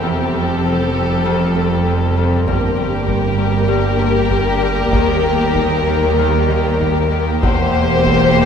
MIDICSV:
0, 0, Header, 1, 10, 480
1, 0, Start_track
1, 0, Key_signature, -2, "minor"
1, 0, Tempo, 612245
1, 20, Time_signature, 4, 2, 24, 8
1, 3380, Tempo, 623701
1, 6567, End_track
2, 0, Start_track
2, 0, Title_t, "Violin section"
2, 0, Program_c, 0, 48
2, 7, Note_on_c, 0, 69, 39
2, 1904, Note_off_c, 0, 69, 0
2, 1942, Note_on_c, 0, 70, 50
2, 5748, Note_off_c, 0, 70, 0
2, 5784, Note_on_c, 0, 72, 59
2, 6567, Note_off_c, 0, 72, 0
2, 6567, End_track
3, 0, Start_track
3, 0, Title_t, "Violin section"
3, 0, Program_c, 1, 48
3, 0, Note_on_c, 1, 67, 39
3, 1914, Note_off_c, 1, 67, 0
3, 1945, Note_on_c, 1, 67, 53
3, 5749, Note_off_c, 1, 67, 0
3, 5783, Note_on_c, 1, 67, 54
3, 6567, Note_off_c, 1, 67, 0
3, 6567, End_track
4, 0, Start_track
4, 0, Title_t, "French horn section"
4, 0, Program_c, 2, 60
4, 21, Note_on_c, 2, 55, 56
4, 21, Note_on_c, 2, 69, 55
4, 1910, Note_off_c, 2, 69, 0
4, 1938, Note_on_c, 2, 70, 65
4, 3826, Note_off_c, 2, 55, 0
4, 3857, Note_on_c, 2, 55, 67
4, 5637, Note_off_c, 2, 55, 0
4, 5637, Note_off_c, 2, 70, 0
4, 5768, Note_on_c, 2, 58, 78
4, 5779, Note_on_c, 2, 72, 70
4, 6567, Note_off_c, 2, 58, 0
4, 6567, Note_off_c, 2, 72, 0
4, 6567, End_track
5, 0, Start_track
5, 0, Title_t, "Viola section"
5, 0, Program_c, 3, 48
5, 0, Note_on_c, 3, 60, 45
5, 1911, Note_off_c, 3, 60, 0
5, 1941, Note_on_c, 3, 58, 62
5, 5747, Note_off_c, 3, 58, 0
5, 5798, Note_on_c, 3, 58, 73
5, 6567, Note_off_c, 3, 58, 0
5, 6567, End_track
6, 0, Start_track
6, 0, Title_t, "Harp"
6, 0, Program_c, 4, 46
6, 20, Note_on_c, 4, 41, 49
6, 252, Note_off_c, 4, 41, 0
6, 262, Note_on_c, 4, 41, 34
6, 504, Note_on_c, 4, 53, 39
6, 734, Note_off_c, 4, 41, 0
6, 743, Note_on_c, 4, 41, 39
6, 972, Note_off_c, 4, 41, 0
6, 982, Note_on_c, 4, 41, 59
6, 1207, Note_off_c, 4, 41, 0
6, 1216, Note_on_c, 4, 41, 44
6, 1447, Note_off_c, 4, 41, 0
6, 1457, Note_on_c, 4, 41, 42
6, 1693, Note_off_c, 4, 41, 0
6, 1702, Note_on_c, 4, 41, 46
6, 1941, Note_on_c, 4, 43, 61
6, 1961, Note_off_c, 4, 41, 0
6, 1965, Note_off_c, 4, 53, 0
6, 2163, Note_off_c, 4, 43, 0
6, 2172, Note_on_c, 4, 43, 43
6, 2402, Note_on_c, 4, 55, 46
6, 2641, Note_off_c, 4, 43, 0
6, 2650, Note_on_c, 4, 43, 48
6, 2875, Note_off_c, 4, 43, 0
6, 2885, Note_on_c, 4, 43, 66
6, 3119, Note_off_c, 4, 43, 0
6, 3128, Note_on_c, 4, 43, 55
6, 3368, Note_off_c, 4, 43, 0
6, 3377, Note_on_c, 4, 43, 44
6, 3607, Note_off_c, 4, 43, 0
6, 3616, Note_on_c, 4, 43, 51
6, 3853, Note_on_c, 4, 51, 69
6, 3875, Note_off_c, 4, 43, 0
6, 4084, Note_off_c, 4, 51, 0
6, 4093, Note_on_c, 4, 51, 49
6, 4336, Note_on_c, 4, 63, 50
6, 4567, Note_off_c, 4, 51, 0
6, 4576, Note_on_c, 4, 51, 53
6, 4815, Note_off_c, 4, 51, 0
6, 4824, Note_on_c, 4, 51, 74
6, 5057, Note_off_c, 4, 51, 0
6, 5067, Note_on_c, 4, 51, 54
6, 5290, Note_off_c, 4, 51, 0
6, 5300, Note_on_c, 4, 51, 48
6, 5422, Note_off_c, 4, 55, 0
6, 5528, Note_off_c, 4, 51, 0
6, 5538, Note_on_c, 4, 51, 53
6, 5780, Note_on_c, 4, 40, 71
6, 5798, Note_off_c, 4, 51, 0
6, 5799, Note_off_c, 4, 63, 0
6, 6016, Note_off_c, 4, 40, 0
6, 6026, Note_on_c, 4, 40, 47
6, 6267, Note_on_c, 4, 52, 46
6, 6486, Note_off_c, 4, 40, 0
6, 6495, Note_on_c, 4, 40, 45
6, 6567, Note_off_c, 4, 40, 0
6, 6567, Note_off_c, 4, 52, 0
6, 6567, End_track
7, 0, Start_track
7, 0, Title_t, "Cello section"
7, 0, Program_c, 5, 48
7, 14, Note_on_c, 5, 41, 50
7, 1907, Note_off_c, 5, 41, 0
7, 1934, Note_on_c, 5, 43, 56
7, 3822, Note_off_c, 5, 43, 0
7, 3850, Note_on_c, 5, 39, 63
7, 5771, Note_on_c, 5, 40, 59
7, 5775, Note_off_c, 5, 39, 0
7, 6567, Note_off_c, 5, 40, 0
7, 6567, End_track
8, 0, Start_track
8, 0, Title_t, "Synth drone"
8, 0, Program_c, 6, 95
8, 10, Note_on_c, 6, 41, 62
8, 1936, Note_off_c, 6, 41, 0
8, 1940, Note_on_c, 6, 31, 62
8, 3849, Note_on_c, 6, 39, 63
8, 3855, Note_off_c, 6, 31, 0
8, 5775, Note_off_c, 6, 39, 0
8, 5777, Note_on_c, 6, 40, 66
8, 6567, Note_off_c, 6, 40, 0
8, 6567, End_track
9, 0, Start_track
9, 0, Title_t, "Double bass section"
9, 0, Program_c, 7, 48
9, 13, Note_on_c, 7, 29, 46
9, 1906, Note_off_c, 7, 29, 0
9, 1934, Note_on_c, 7, 31, 54
9, 3822, Note_off_c, 7, 31, 0
9, 3849, Note_on_c, 7, 39, 60
9, 5770, Note_on_c, 7, 28, 63
9, 5775, Note_off_c, 7, 39, 0
9, 6567, Note_off_c, 7, 28, 0
9, 6567, End_track
10, 0, Start_track
10, 0, Title_t, "Taiko and cinematic ensemble drums"
10, 1943, Note_on_c, 9, 41, 82
10, 2021, Note_off_c, 9, 41, 0
10, 2418, Note_on_c, 9, 41, 63
10, 2496, Note_off_c, 9, 41, 0
10, 3379, Note_on_c, 9, 41, 61
10, 3456, Note_off_c, 9, 41, 0
10, 3854, Note_on_c, 9, 41, 86
10, 3931, Note_off_c, 9, 41, 0
10, 4336, Note_on_c, 9, 41, 69
10, 4413, Note_off_c, 9, 41, 0
10, 5298, Note_on_c, 9, 41, 67
10, 5375, Note_off_c, 9, 41, 0
10, 5782, Note_on_c, 9, 41, 92
10, 5859, Note_off_c, 9, 41, 0
10, 6266, Note_on_c, 9, 41, 64
10, 6343, Note_off_c, 9, 41, 0
10, 6567, End_track
0, 0, End_of_file